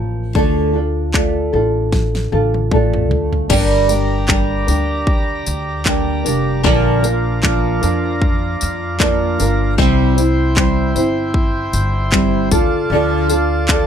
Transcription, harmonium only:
0, 0, Header, 1, 2, 480
1, 0, Start_track
1, 0, Tempo, 785340
1, 214, Time_signature, 4, 2, 24, 8
1, 8476, End_track
2, 0, Start_track
2, 0, Title_t, "Harmonium"
2, 0, Program_c, 0, 20
2, 2140, Note_on_c, 0, 74, 64
2, 2141, Note_on_c, 0, 82, 86
2, 2144, Note_on_c, 0, 67, 69
2, 4044, Note_off_c, 0, 67, 0
2, 4061, Note_on_c, 0, 65, 79
2, 5955, Note_off_c, 0, 74, 0
2, 5955, Note_off_c, 0, 82, 0
2, 5960, Note_off_c, 0, 65, 0
2, 5975, Note_on_c, 0, 79, 87
2, 5976, Note_on_c, 0, 64, 74
2, 5980, Note_on_c, 0, 72, 74
2, 7636, Note_off_c, 0, 64, 0
2, 7636, Note_off_c, 0, 79, 0
2, 7638, Note_off_c, 0, 72, 0
2, 7647, Note_on_c, 0, 81, 90
2, 7650, Note_on_c, 0, 65, 83
2, 7651, Note_on_c, 0, 74, 70
2, 8476, Note_off_c, 0, 65, 0
2, 8476, Note_off_c, 0, 74, 0
2, 8476, Note_off_c, 0, 81, 0
2, 8476, End_track
0, 0, End_of_file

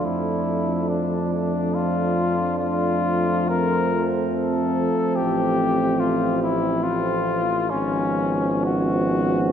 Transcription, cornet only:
0, 0, Header, 1, 2, 480
1, 0, Start_track
1, 0, Tempo, 852273
1, 30, Time_signature, 3, 2, 24, 8
1, 1469, Tempo, 874636
1, 2429, Tempo, 840336
1, 4349, Tempo, 903614
1, 5306, End_track
2, 0, Start_track
2, 0, Title_t, "Cornet"
2, 0, Program_c, 0, 56
2, 24, Note_on_c, 0, 64, 58
2, 501, Note_on_c, 0, 62, 50
2, 510, Note_off_c, 0, 64, 0
2, 747, Note_off_c, 0, 62, 0
2, 749, Note_on_c, 0, 62, 57
2, 982, Note_on_c, 0, 65, 72
2, 991, Note_off_c, 0, 62, 0
2, 1456, Note_off_c, 0, 65, 0
2, 1459, Note_on_c, 0, 65, 66
2, 1951, Note_on_c, 0, 70, 75
2, 1959, Note_off_c, 0, 65, 0
2, 2278, Note_off_c, 0, 70, 0
2, 2423, Note_on_c, 0, 69, 62
2, 2886, Note_on_c, 0, 67, 78
2, 2895, Note_off_c, 0, 69, 0
2, 3366, Note_on_c, 0, 65, 66
2, 3374, Note_off_c, 0, 67, 0
2, 3603, Note_off_c, 0, 65, 0
2, 3607, Note_on_c, 0, 64, 73
2, 3842, Note_on_c, 0, 65, 77
2, 3851, Note_off_c, 0, 64, 0
2, 4336, Note_on_c, 0, 61, 74
2, 4345, Note_off_c, 0, 65, 0
2, 4839, Note_on_c, 0, 66, 77
2, 4847, Note_off_c, 0, 61, 0
2, 5306, Note_off_c, 0, 66, 0
2, 5306, End_track
0, 0, End_of_file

